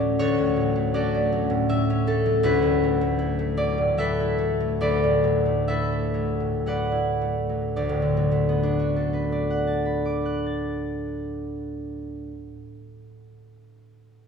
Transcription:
0.00 0.18 D2 medium
0.00 0.37 A2 medium
0.00 0.55 F#3 medium
0.00 0.74 A3 medium
0.00 0.93 C#4 medium
0.00 1.76 D4 medium
0.00 0.19 F#4 medium
0.00 0.19 A4 medium
0.00 0.18 C#5 loud
0.00 0.93 D5 loud
0.19 2.42 D2 medium
0.19 0.94 F#4 medium
0.19 0.95 A4 medium
0.19 2.47 C#5 loud
0.38 1.49 A2 medium
0.57 1.31 F#3 medium
0.76 1.13 A3 medium
0.94 1.89 C#4 medium
0.94 2.43 F#4 medium
0.94 2.06 A4 medium
0.94 3.56 D5 loud
1.14 2.06 A3 medium
1.32 1.68 F#3 medium
1.50 2.46 A2 medium
1.69 2.25 F#3 medium
1.69 3.97 E5 loud
1.90 2.48 C#4 medium
2.07 3.00 A3 medium
2.07 3.98 A4 loud
2.26 2.82 F#3 medium
2.43 4.79 D2 loud
2.43 3.17 E4 loud
2.43 6.35 F#4 medium
2.43 3.98 B4 loud
2.62 3.77 A2 medium
2.84 3.56 F#3 medium
3.01 3.38 A3 medium
3.19 4.19 E4 medium
3.39 4.37 A3 medium
3.57 3.97 F#3 medium
3.57 4.80 D5 loud
3.78 5.02 A2 medium
3.98 4.59 F#3 medium
3.98 4.81 A4 loud
3.98 4.81 B4 medium
3.98 5.67 E5 loud
4.20 5.66 E4 medium
4.38 5.44 A3 medium
4.60 5.22 F#3 medium
4.81 7.75 D2 medium
4.81 5.68 A4 medium
4.81 5.68 B4 medium
4.81 6.67 D5 loud
5.04 6.39 A2 medium
5.24 6.13 F#3 medium
5.46 5.91 A3 medium
5.67 6.91 E4 medium
5.67 8.95 A4 medium
5.67 6.67 B4 medium
5.67 7.83 E5 loud
5.92 7.20 A3 medium
6.14 6.65 F#3 medium
6.40 7.82 A2 medium
6.66 7.48 F#3 medium
6.66 9.12 B4 medium
6.66 7.75 D5 medium
6.66 9.49 F#5 medium
6.92 7.81 E4 medium
7.21 8.30 A3 medium
7.49 8.16 F#3 medium
7.76 12.29 D2 medium
7.76 9.32 D5 medium
7.89 12.29 A2 medium
8.02 12.28 D3 medium
8.17 12.29 F#3 medium
8.31 12.29 A3 medium
8.49 12.30 B3 medium
8.63 12.29 D4 medium
8.79 12.29 F#4 medium
8.96 12.29 A4 medium
9.13 12.30 B4 medium
9.32 12.30 D5 medium
9.50 12.30 F#5 medium
9.67 12.29 A5 medium
9.85 12.29 B5 medium
10.05 12.30 D6 medium
10.25 12.30 F#6 medium
10.46 12.30 A6 medium

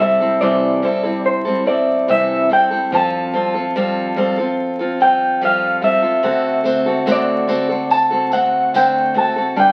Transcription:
0.00 2.87 C2 medium
0.00 0.20 G3 medium
0.00 0.20 C4 medium
0.00 0.20 E4 medium
0.00 0.19 A4 medium
0.00 0.43 E5 medium
0.20 0.41 G3 soft
0.20 0.41 C4 soft
0.20 0.41 E4 soft
0.20 0.41 A4 soft
0.41 0.83 C3 medium
0.41 0.83 E3 medium
0.41 0.81 G3 medium
0.41 0.82 C4 medium
0.41 0.83 E4 medium
0.41 0.84 A4 medium
0.41 1.25 D5 medium
0.82 1.04 G3 medium
0.82 1.04 C4 medium
0.82 1.04 E4 medium
0.82 1.02 A4 medium
1.03 1.46 G3 soft
1.03 1.46 C4 soft
1.03 1.44 E4 soft
1.03 1.44 A4 soft
1.26 1.67 C5 medium
1.45 1.64 G3 soft
1.45 1.66 C4 soft
1.45 1.66 E4 soft
1.45 1.66 A4 medium
1.66 2.08 G3 soft
1.66 2.08 C4 medium
1.66 2.08 E4 soft
1.66 2.08 A4 soft
1.66 2.10 D5 medium
2.08 2.50 C3 medium
2.08 2.50 E3 medium
2.08 2.48 G3 medium
2.08 2.49 C4 medium
2.08 2.50 E4 medium
2.08 2.50 A4 medium
2.08 2.52 E5 medium
2.49 2.70 G3 medium
2.49 2.71 C4 medium
2.49 2.70 E4 medium
2.49 2.69 A4 medium
2.49 2.94 G5 medium
2.71 2.91 G3 soft
2.71 2.92 C4 soft
2.71 2.92 E4 soft
2.71 2.91 A4 soft
2.92 6.21 F2 medium
2.92 3.33 F3 medium
2.92 3.32 G3 medium
2.92 3.33 C4 medium
2.92 3.34 F4 medium
2.92 3.34 A4 medium
2.92 5.01 A5 medium
3.34 3.54 G3 medium
3.34 3.54 C4 medium
3.34 3.54 F4 medium
3.34 3.53 A4 medium
3.54 3.75 C4 soft
3.54 3.75 F4 soft
3.54 3.75 A4 soft
3.76 4.17 F3 medium
3.76 4.15 G3 medium
3.76 4.16 C4 medium
3.76 4.17 F4 medium
3.76 4.17 A4 medium
4.16 4.37 G3 medium
4.16 4.38 C4 medium
4.16 4.38 F4 medium
4.16 4.36 A4 medium
4.38 4.80 C4 soft
4.38 4.79 F4 soft
4.38 4.78 A4 medium
4.79 4.99 C4 soft
4.79 5.00 F4 soft
4.79 5.00 A4 soft
5.00 5.41 G3 medium
5.00 5.41 C4 medium
5.00 5.42 F4 medium
5.00 5.42 A4 medium
5.00 5.39 G5 medium
5.41 5.83 F3 medium
5.41 5.80 G3 medium
5.41 5.81 C4 medium
5.41 5.82 F4 medium
5.41 5.83 A4 medium
5.41 5.84 F5 medium
5.82 6.03 G3 medium
5.82 6.03 C4 medium
5.82 6.02 F4 medium
5.82 6.01 A4 medium
5.82 7.12 E5 medium
6.02 6.22 C4 soft
6.02 6.23 F4 soft
6.02 6.23 A4 medium
6.23 9.54 D2 medium
6.23 6.65 D3 medium
6.23 6.63 A3 medium
6.23 6.64 C4 medium
6.23 6.65 F#4 medium
6.23 6.65 A4 medium
6.64 6.86 A3 medium
6.64 6.86 C4 medium
6.64 6.86 F#4 medium
6.64 6.85 A4 medium
6.64 tambourine medium
6.86 7.06 C4 soft
6.86 7.07 F#4 soft
6.86 7.07 A4 soft
7.06 7.48 D3 medium
7.06 7.46 A3 medium
7.06 7.47 C4 medium
7.06 7.47 F#4 medium
7.06 7.48 A4 medium
7.06 tambourine medium
7.12 7.96 D5 medium
7.47 7.69 A3 medium
7.47 7.70 C4 medium
7.47 7.69 F#4 medium
7.47 7.67 A4 medium
7.47 tambourine medium
7.69 8.12 C4 soft
7.69 8.11 F#4 soft
7.69 8.10 A4 medium
7.90 8.33 A5 medium
7.90 tambourine medium
8.11 8.31 C4 soft
8.11 8.32 F#4 soft
8.11 8.32 A4 medium
8.32 8.74 A3 soft
8.32 8.74 C4 medium
8.32 8.75 F#4 medium
8.32 8.74 A4 medium
8.32 8.76 F#5 medium
8.32 tambourine medium
8.74 9.16 D3 medium
8.74 9.13 A3 medium
8.74 9.14 C4 medium
8.74 9.15 A4 medium
8.74 9.14 G5 medium
8.74 tambourine medium
9.14 9.36 A3 medium
9.14 9.36 C4 medium
9.14 9.36 F#4 medium
9.14 9.35 A4 medium
9.14 9.59 A5 medium
9.36 9.57 C4 soft
9.36 9.57 F#4 soft
9.36 9.57 A4 soft
9.56 9.72 G1 medium
9.56 9.72 G3 medium
9.56 9.72 D4 medium
9.56 9.72 G4 medium
9.56 9.72 B4 medium
9.56 9.72 G5 medium

